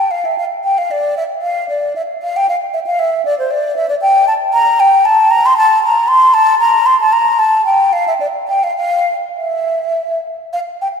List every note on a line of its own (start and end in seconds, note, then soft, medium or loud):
0.00 0.12 G5 medium
0.11 0.27 F5 medium
0.25 0.38 E5 medium
0.38 0.44 F5 medium
0.64 0.80 G5 medium
0.78 0.93 F5 medium
0.91 1.17 D5 medium
1.17 1.23 E5 medium
1.42 1.68 F5 medium
1.69 1.95 D5 medium
1.96 2.02 E5 medium
2.22 2.38 F5 medium
2.37 2.48 G5 medium
2.49 2.55 F5 medium
2.73 2.79 E5 medium
2.86 3.01 F5 medium
2.99 3.25 E5 medium
3.25 3.38 D5 medium
3.39 3.52 C5 medium
3.51 3.76 D5 medium
3.76 3.89 E5 medium
3.89 3.95 D5 medium
4.02 4.27 G5 loud
4.28 4.34 A5 medium
4.53 4.81 A#5 loud
4.80 5.07 G5 loud
5.05 5.32 A5 loud
5.31 5.47 A#5 loud
5.46 5.57 C6 loud
5.57 5.83 A5 loud
5.84 6.10 A#5 loud
6.08 6.35 C6 loud
6.34 6.59 A5 loud
6.60 6.87 A#5 loud
6.86 6.99 C6 loud
7.01 7.14 A5 loud
7.13 7.41 A#5 loud
7.39 7.65 A5 loud
7.66 7.94 G5 medium
7.93 8.06 F5 medium
8.08 8.14 E5 medium
8.20 8.27 D5 medium
8.48 8.65 G5 medium
8.64 8.76 F5 medium
8.76 9.15 F5 medium
9.36 10.20 E5 medium
10.53 10.59 F5 medium
10.81 10.88 G5 medium